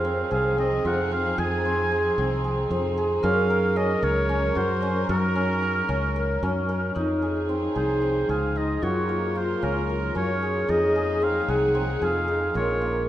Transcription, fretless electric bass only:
0.00 0.23 F2 medium
0.32 0.79 C2 medium
0.85 1.32 F2 medium
1.38 2.09 F2 medium
2.18 2.65 C2 medium
2.70 3.18 F2 medium
3.24 3.95 F#2 loud
4.03 4.50 C#2 medium
4.56 5.04 F#2 medium
5.09 5.80 F#2 loud
5.89 6.37 C#2 medium
6.43 6.90 F#2 medium
6.96 7.67 F2 medium
7.76 8.23 C2 medium
8.29 8.77 C#2 medium
8.83 9.54 F#2 medium
9.63 10.10 C#2 medium
10.16 10.63 F#2 medium
10.69 11.40 F2 medium
11.48 11.96 C2 medium
12.02 12.49 F2 medium
12.55 13.09 A#1 medium

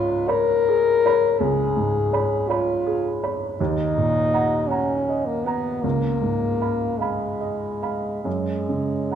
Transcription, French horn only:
0.00 0.29 F4 medium
0.28 1.42 A#4 loud
1.41 2.50 G#4 medium
2.48 3.30 F4 medium
3.58 4.69 D#4 medium
4.68 5.27 C#4 medium
5.26 5.45 A#3 medium
5.44 5.84 B3 medium
5.82 7.00 A#3 medium
6.98 8.23 G#3 medium
8.24 9.15 G#3 medium

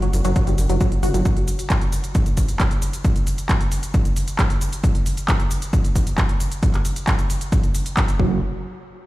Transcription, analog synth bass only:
0.14 0.22 F#1 medium
0.25 0.33 F#1 medium
0.47 0.55 F#1 medium
0.58 0.66 F#1 medium
0.70 0.78 F#1 medium
1.03 1.11 G1 medium
1.14 1.22 G1 medium
8.19 8.40 F#1 medium

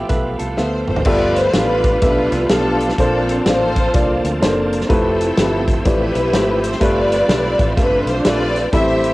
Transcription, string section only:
0.58 0.86 C5 medium
0.88 1.05 C5 medium
1.06 1.54 F4 medium
1.06 1.53 B4 medium
1.06 1.37 D5 loud
1.37 1.54 C5 loud
1.55 2.02 D4 medium
1.55 2.02 F4 medium
1.55 2.01 B4 loud
2.03 2.51 D4 medium
2.03 2.51 F4 medium
2.03 2.47 B4 medium
2.52 2.96 D4 medium
2.52 2.96 F4 medium
2.52 2.98 A4 medium
3.00 3.91 C4 medium
3.00 3.91 D4 medium
3.00 3.43 A4 medium
3.48 4.39 F4 medium
3.48 4.39 A4 medium
3.48 4.26 C5 loud
4.90 5.82 C4 medium
4.90 5.82 E4 medium
4.90 5.82 A4 medium
5.85 6.77 E4 medium
5.85 6.77 G4 medium
5.85 6.64 B4 loud
6.65 6.82 C5 medium
6.81 7.73 F4 medium
6.81 7.73 B4 medium
6.81 7.78 D5 loud
7.78 8.69 D4 medium
7.78 8.24 F4 medium
7.78 8.06 B4 loud
8.09 8.26 C5 loud
8.24 8.70 F4 medium
8.24 8.69 B4 medium
8.24 8.73 D5 loud
8.72 9.14 G4 medium
8.72 9.14 C5 medium
8.72 9.14 E5 loud

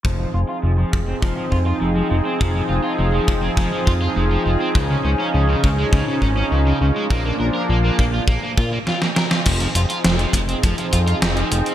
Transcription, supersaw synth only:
0.05 7.07 F3 medium
0.05 4.71 C4 medium
0.05 4.71 D#4 medium
0.05 8.83 G#4 medium
4.75 7.08 C#4 medium
4.75 7.08 D#4 medium
7.10 8.85 F3 medium
7.10 8.85 A#3 medium
7.10 8.85 D4 medium
9.45 11.75 F3 medium
9.45 11.75 C4 medium
9.45 11.75 D#4 medium
9.45 11.75 G#4 medium

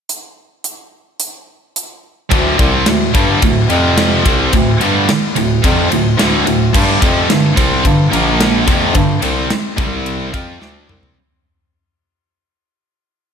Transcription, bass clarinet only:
2.32 2.57 D2 loud
2.59 2.84 C2 medium
2.87 3.12 D2 medium
3.14 3.40 G2 medium
3.43 3.68 D2 medium
3.70 4.21 F2 loud
4.26 4.51 C2 medium
4.53 4.79 D2 loud
4.82 5.07 G2 medium
5.37 5.62 D2 medium
5.64 5.89 F2 loud
5.91 6.17 D2 medium
6.19 6.44 D2 medium
6.45 6.71 D2 medium
6.74 7.00 G2 loud
7.02 7.27 F2 loud
7.29 7.55 G2 medium
7.57 7.82 C2 medium
7.85 8.10 G2 medium
8.12 8.63 A#1 loud
8.67 8.93 F2 medium
8.95 9.21 G2 loud
9.22 9.48 C2 loud
9.78 10.30 C2 medium
10.34 10.59 F2 medium
10.60 10.87 D2 medium
10.89 11.15 C2 medium

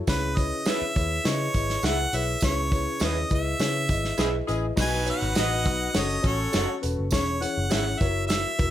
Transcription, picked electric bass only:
0.07 0.51 C#2 loud
0.82 muted picked electric bass stroke soft
0.96 1.18 D#2 medium
1.25 1.47 C#3 medium
1.54 1.76 G#1 medium
1.83 2.05 C#2 loud
2.13 2.35 B1 medium
2.43 2.86 C#2 loud
3.01 3.23 D#2 medium
3.32 3.53 C#2 medium
3.60 3.91 C#3 loud
3.89 4.11 G#1 medium
4.19 4.40 B1 medium
4.49 4.70 A1 medium
4.78 5.10 B1 loud
5.22 5.33 G#1 medium
5.37 5.66 A1 medium
5.66 5.88 B1 medium
5.96 6.17 F#1 loud
6.24 6.46 A1 medium
6.54 6.65 F#1 medium
6.84 6.95 E1 medium
6.99 7.12 F#1 medium
7.12 7.45 E1 loud
7.57 7.68 F#1 medium
7.73 7.94 G#1 medium
8.01 8.44 F#1 medium
8.59 8.71 E1 medium

